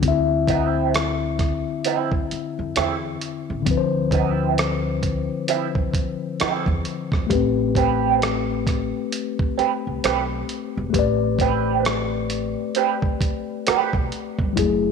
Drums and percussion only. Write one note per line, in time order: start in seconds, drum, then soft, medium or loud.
0.03 kick medium
0.03 closed hi-hat medium
0.48 kick medium
0.48 closed hi-hat medium
0.94 cross-stick loud
0.94 closed hi-hat medium
1.39 kick medium
1.39 cross-stick soft
1.39 closed hi-hat medium
1.84 closed hi-hat medium
2.12 kick medium
2.31 closed hi-hat medium
2.76 cross-stick medium
2.76 closed hi-hat medium
3.21 closed hi-hat medium
3.66 kick loud
3.66 closed hi-hat medium
4.11 kick medium
4.11 closed hi-hat medium
4.58 cross-stick loud
4.58 closed hi-hat medium
5.03 kick medium
5.03 closed hi-hat medium
5.48 closed hi-hat medium
5.75 kick medium
5.94 kick medium
5.94 closed hi-hat medium
6.40 cross-stick loud
6.40 closed hi-hat medium
6.66 kick medium
6.85 closed hi-hat soft
7.12 kick medium
7.12 cross-stick soft
7.30 kick loud
7.30 closed hi-hat medium
7.75 kick medium
7.75 closed hi-hat medium
8.22 cross-stick medium
8.22 closed hi-hat medium
8.67 kick medium
8.67 cross-stick soft
8.67 closed hi-hat medium
9.12 closed hi-hat medium
9.39 kick medium
9.59 closed hi-hat soft
10.04 cross-stick medium
10.04 closed hi-hat medium
10.49 closed hi-hat medium
10.94 kick loud
10.94 closed hi-hat medium
11.39 kick medium
11.39 closed hi-hat medium
11.85 cross-stick loud
11.85 closed hi-hat medium
12.30 closed hi-hat medium
12.75 closed hi-hat medium
13.02 kick medium
13.21 kick medium
13.21 closed hi-hat medium
13.67 cross-stick medium
13.67 closed hi-hat medium
13.93 kick medium
14.12 closed hi-hat medium
14.39 kick medium
14.57 kick loud
14.57 closed hi-hat medium